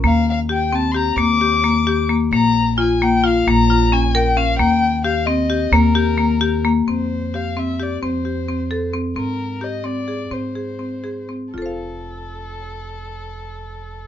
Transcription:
0.03 1.14 D#2 medium
0.03 0.35 A#3 medium
0.03 0.26 F5 medium
0.30 0.39 F5 medium
0.49 0.65 G4 medium
0.49 0.77 G5 medium
0.73 0.88 C4 medium
0.73 0.93 A5 medium
0.92 1.10 G4 medium
0.92 0.98 C6 medium
0.96 1.18 A#5 loud
1.17 2.29 D#2 medium
1.17 1.33 A#3 medium
1.17 2.05 D6 loud
1.41 1.56 G4 medium
1.64 1.79 A#3 medium
1.87 2.02 G4 medium
2.10 2.25 A#3 medium
2.31 3.44 A#1 medium
2.31 2.64 A#3 medium
2.31 2.75 A#5 loud
2.78 2.93 F4 medium
2.78 3.05 G#5 medium
3.02 3.17 A#3 medium
3.02 3.28 G5 medium
3.24 3.39 F4 medium
3.24 3.50 F5 medium
3.47 4.58 A#1 medium
3.47 3.63 A#3 medium
3.47 3.94 A#5 loud
3.70 3.85 F4 medium
3.92 4.08 C#4 medium
3.92 4.17 G#5 loud
4.15 4.30 A#4 loud
4.15 4.38 G5 medium
4.37 4.52 C#4 medium
4.37 4.59 F5 loud
4.59 5.70 D#2 medium
4.59 4.90 A#3 medium
4.59 5.01 G5 medium
5.04 5.20 G4 medium
5.04 5.27 F5 medium
5.26 5.42 C4 medium
5.26 5.75 D#5 medium
5.50 5.65 G4 medium
5.72 6.84 D#2 medium
5.72 5.88 A#3 loud
5.72 6.64 A#4 medium
5.95 6.10 G4 medium
6.18 6.33 A#3 medium
6.41 6.56 G4 medium
6.65 6.80 A#3 medium
6.87 7.99 F2 medium
6.87 7.19 C4 medium
6.87 7.37 C5 medium
7.34 7.49 G4 medium
7.34 7.60 F5 medium
7.57 7.72 C4 medium
7.57 7.84 E5 medium
7.80 7.95 G4 medium
7.80 8.03 D5 medium
8.02 9.13 F2 medium
8.02 8.18 C4 medium
8.02 8.90 C5 medium
8.25 8.40 G4 medium
8.48 8.63 C4 medium
8.71 8.86 A4 medium
8.94 9.09 C4 medium
9.15 10.28 G#2 medium
9.15 9.47 C4 medium
9.15 9.65 A#4 medium
9.61 9.77 G4 medium
9.61 9.87 D#5 medium
9.84 10.00 C4 medium
9.84 10.34 D5 medium
10.08 10.23 G#4 medium
10.31 11.52 G#2 medium
10.31 10.47 C4 medium
10.31 11.30 C5 medium
10.55 10.71 G#4 medium
10.79 10.96 C4 soft
11.04 11.21 G#4 medium
11.29 11.46 C4 soft
11.54 14.07 F1 medium
11.54 14.07 F4 soft
11.54 14.07 A4 medium
11.54 14.07 A4 soft
11.62 14.07 C5 soft
11.62 14.07 F5 soft

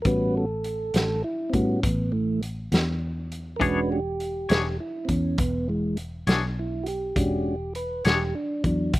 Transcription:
0.02 0.90 A1 medium
0.02 0.45 G3 soft
0.02 0.45 B3 soft
0.02 0.06 A#4 medium
0.02 kick medium
0.02 closed hi-hat medium
0.06 0.45 C#4 soft
0.06 0.46 F#4 soft
0.06 0.35 B4 medium
0.37 1.22 A4 medium
0.64 closed hi-hat medium
0.94 1.22 A1 medium
0.94 snare medium
0.94 closed hi-hat medium
1.24 1.53 E4 medium
1.50 1.81 A2 medium
1.50 1.80 G3 soft
1.50 1.80 B3 soft
1.50 1.53 C4 medium
1.50 1.80 F#4 soft
1.50 kick medium
1.50 closed hi-hat medium
1.54 1.83 C#4 medium
1.83 2.68 A1 medium
1.83 2.12 B3 medium
1.83 kick medium
1.83 closed hi-hat medium
2.12 2.40 E3 medium
2.12 2.41 A3 medium
2.43 closed hi-hat medium
2.72 3.57 E2 medium
2.72 snare medium
2.72 closed hi-hat medium
3.32 closed hi-hat soft
3.56 3.78 E3 medium
3.56 4.00 G#3 soft
3.56 4.00 C#4 soft
3.56 3.60 A#4 medium
3.60 4.46 E1 medium
3.60 4.00 D4 soft
3.60 3.79 D4 medium
3.60 4.00 F#4 medium
3.60 3.79 G#4 medium
3.60 3.90 B4 medium
3.60 3.79 C#5 medium
3.60 kick medium
3.60 closed hi-hat medium
3.92 4.78 G4 medium
4.20 closed hi-hat soft
4.49 4.77 E1 medium
4.49 4.68 E3 soft
4.49 4.68 D4 medium
4.49 4.68 G#4 medium
4.49 4.67 C#5 medium
4.49 snare loud
4.49 closed hi-hat medium
4.80 5.08 E4 medium
5.05 5.36 E2 medium
5.05 5.09 C4 medium
5.05 kick medium
5.05 closed hi-hat medium
5.09 5.38 C#4 medium
5.38 6.23 E1 medium
5.38 5.68 B3 medium
5.38 kick medium
5.38 closed hi-hat medium
5.69 5.96 E3 medium
5.69 5.98 G#3 medium
5.97 closed hi-hat medium
6.27 7.12 B1 medium
6.27 6.46 E3 soft
6.27 6.46 D4 medium
6.27 6.45 G#4 medium
6.27 6.45 C#5 medium
6.27 snare medium
6.27 closed hi-hat medium
6.59 6.87 E4 medium
6.84 6.87 F#4 medium
6.84 closed hi-hat medium
6.88 7.73 G4 medium
7.16 8.01 E1 medium
7.16 7.55 G#3 soft
7.16 7.55 C#4 soft
7.16 7.56 D4 soft
7.16 7.56 F#4 medium
7.16 kick medium
7.16 closed hi-hat medium
7.75 8.04 B4 medium
7.75 closed hi-hat medium
8.05 8.32 E1 medium
8.05 8.24 E3 soft
8.05 8.23 D4 medium
8.05 8.34 G4 medium
8.05 8.23 G#4 medium
8.05 8.23 C#5 medium
8.05 snare loud
8.05 closed hi-hat medium
8.35 8.64 D4 medium
8.64 8.91 E2 medium
8.64 8.92 F#3 medium
8.64 8.94 D4 medium
8.64 kick medium
8.64 closed hi-hat medium
8.94 8.99 E1 medium
8.94 kick loud
8.94 closed hi-hat medium

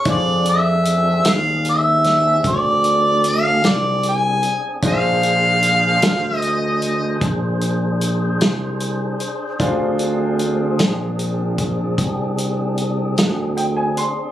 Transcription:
0.05 1.21 F2 medium
0.05 4.79 C4 medium
0.05 4.79 D4 soft
0.05 4.79 D4 medium
0.05 4.79 F4 soft
0.05 4.79 G#4 medium
0.05 4.80 G#4 soft
0.05 4.80 C5 soft
0.05 kick medium
0.05 closed hi-hat medium
0.10 0.45 D5 medium
0.45 1.31 E5 medium
0.45 closed hi-hat soft
0.85 closed hi-hat medium
1.25 2.41 D#2 medium
1.25 snare medium
1.25 closed hi-hat medium
1.29 1.67 F5 medium
1.65 closed hi-hat soft
1.69 2.43 E5 medium
2.04 snare soft
2.04 closed hi-hat soft
2.44 3.60 D2 medium
2.44 kick medium
2.44 closed hi-hat medium
2.48 3.30 D5 medium
2.84 closed hi-hat soft
3.24 closed hi-hat soft
3.28 3.70 F5 medium
3.64 4.54 C2 medium
3.64 snare medium
3.64 closed hi-hat medium
3.68 4.06 D5 medium
4.03 closed hi-hat soft
4.09 4.71 G#5 medium
4.43 closed hi-hat medium
4.82 5.99 A#1 medium
4.82 9.56 D4 medium
4.82 9.56 D4 soft
4.82 9.56 F4 soft
4.82 9.56 G#4 medium
4.82 9.57 G#4 soft
4.82 9.56 C5 medium
4.82 9.57 C5 soft
4.82 kick medium
4.82 closed hi-hat medium
4.88 6.37 F5 medium
5.23 closed hi-hat soft
5.63 closed hi-hat medium
6.02 7.18 D2 medium
6.02 snare loud
6.02 closed hi-hat medium
6.37 7.20 D#5 medium
6.42 closed hi-hat soft
6.82 closed hi-hat medium
7.21 8.37 A#1 medium
7.21 kick medium
7.21 closed hi-hat medium
7.61 closed hi-hat soft
8.01 closed hi-hat soft
8.41 9.30 C2 medium
8.41 snare medium
8.41 closed hi-hat medium
8.80 closed hi-hat medium
9.20 closed hi-hat soft
9.59 10.76 D2 medium
9.59 14.32 C4 medium
9.59 14.32 D4 medium
9.59 14.32 F4 soft
9.59 14.32 G#4 medium
9.59 14.32 G#4 soft
9.59 14.32 C5 medium
9.59 kick medium
9.59 closed hi-hat medium
9.99 closed hi-hat soft
10.39 closed hi-hat soft
10.79 11.95 A#1 medium
10.79 snare medium
10.79 closed hi-hat medium
11.19 closed hi-hat soft
11.58 kick medium
11.58 closed hi-hat medium
11.98 13.14 C2 medium
11.98 kick medium
11.98 closed hi-hat medium
12.38 closed hi-hat soft
12.78 closed hi-hat soft
13.18 14.08 D2 medium
13.18 snare medium
13.18 closed hi-hat medium
13.57 13.76 G5 soft
13.57 closed hi-hat soft
13.77 13.95 G#5 soft
13.97 14.32 C6 soft
13.97 closed hi-hat medium

